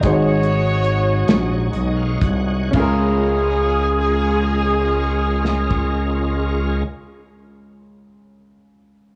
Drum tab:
CC |------------|x-----------|------------|
HH |x-x-x-x-x-x-|------------|------------|
SD |------o-----|----------o-|------------|
BD |o---------o-|o----------o|------------|